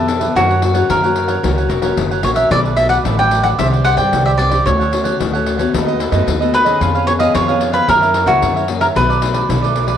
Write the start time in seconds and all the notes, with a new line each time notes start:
Already playing: F2 B2 A4
0.07 B3 D4 G4, muted cavaquinho stroke, pandeiro
0.20 G4 B4 E5, pandeiro
0.35 F#2 F#3 A#3 C#4 F#4 A#4 C#5 F#5, pandeiro
0.49 A#4 C#5 F#5, pandeiro
0.62 A#3 C#4 F#4, muted cavaquinho stroke, pandeiro
0.74 A#3 C#4 F#4 A#4 C#5 F#5, pandeiro
0.89 F#2 C#3 F#4 A#4 C#5 F#5, pandeiro
1.04 A#3 C#4 F#4 A#4 C#5 F#5, pandeiro
1.16 pandeiro
1.28 A#4 C#5 F#5, pandeiro
1.43 C#2 F#3 A#3 C#4 F#4 A#4 C#5 F#5, pandeiro
1.58 A#4 C#5 F#5, pandeiro
1.69 E1 F#4 A#4 C#5 F#5, pandeiro
1.82 A#3 C#4 F#4 A#4 C#5 F#5, pandeiro
1.97 F#1 C#3, pandeiro
2.12 A#4 C#5 F#5, pandeiro
2.23 A#1 A#3 C#4 F#4 C#5, muted cavaquinho stroke, pandeiro
2.36 A#4 C#5 E5 F#5, pandeiro
2.51 B1 B2 F#3 A3 D4 A4 B4 D5, pandeiro
2.65 A4 B4 D5, pandeiro
2.77 F#3 A3 D4 E5, muted cavaquinho stroke, pandeiro
2.89 A4 B4 D5 F#5, pandeiro
3.05 A1 F#2 D4 A4 B4 D5, pandeiro
3.19 F#3 A3 D4 A4 B4 D5 G5, pandeiro
3.31 F#3 A3 D4, pandeiro
3.43 A4 B4 D5 F#5, pandeiro
3.58 C2 C3 G3 C4 D4 G4 C5 D5 E5, pandeiro
3.72 G4 C5 D5, pandeiro
3.84 D4 G4 C5 D5 F#5, pandeiro
3.97 G2 G3 C4 D4 G4 C5 D5 G5, pandeiro
4.13 C2 G2, pandeiro
4.26 G4 C5 D5 E5, pandeiro
4.38 G3 C4 D4 D5, muted cavaquinho stroke, pandeiro
4.50 G4 C5 D5, pandeiro
4.65 D2 D3 A3 C#4 D4 F#4 A4 C#5 F#5, pandeiro
4.79 A4 C#5 F#5, pandeiro
4.91 A3 C#4 F#4, muted cavaquinho stroke, pandeiro
5.04 A4 C#5 F#5, pandeiro
5.19 D2 A2 D4 A4 C#5 F#5, pandeiro
5.33 A3 C#4 F#4 A4 C#5 F#5, pandeiro
5.46 pandeiro
5.58 A3 B3 F#4 A4 C#5 F#5, pandeiro
5.73 D#2 D#3 D#4 A4 B4 D#5, pandeiro
5.87 A4 B4 D#5, pandeiro
5.99 D#4 A4 B4 D#5, pandeiro
6.12 F#2 A3 B3 F#4 A4 B4 D#5, pandeiro
6.27 D#2 D#3, pandeiro
6.40 A3 B3 F#4 A4 B4 D#5, pandeiro
6.53 B4, muted cavaquinho stroke, pandeiro
6.65 B3 C#4 G#4 A4 B4 D#5, pandeiro
6.80 F2 F3 F4 B4 C#5 F5, pandeiro
6.95 B4 C#5 F5, pandeiro
7.07 B3 C#4 G#4 C#5, muted cavaquinho stroke, pandeiro
7.19 B3 C#4 G#4 B4 C#5 D#5 F5, pandeiro
7.34 F2 F3 F4 B4 C#5 F5, pandeiro
7.48 B3 C#4 G#4 B4 C#5 F5, pandeiro
7.61 B3 C#4 G#4, pandeiro
7.72 B4 C#5 F5, pandeiro
7.87 F#2 E3 A#3 C#4 F#4 A#4 C#5 E5, pandeiro
8.02 A#4 C#5 E5, pandeiro
8.14 F#4 A#4 C#5 E5, pandeiro
8.26 C#2 E3 A#3 C#4 F#4 A#4 C#5 E5, pandeiro
8.42 F#2 C#3, pandeiro
8.56 A#4 C#5 E5, pandeiro
8.68 E3 A#3 C#4, muted cavaquinho stroke, pandeiro
8.80 A#4 C#5 E5, pandeiro
8.95 B1 B2 F#3 A3 D4 A4 B4 D5, pandeiro
9.09 A4 B4 D5, pandeiro
9.22 F#3 A3 D4, muted cavaquinho stroke, pandeiro
9.33 A4 B4 D5, pandeiro
9.49 B1 F#2 D4 A4 B4 D5, pandeiro
9.62 F#3 A3 D4 A4 B4 D5, pandeiro
9.76 F#3 A3 D4, pandeiro
9.87 A4 B4 D5, pandeiro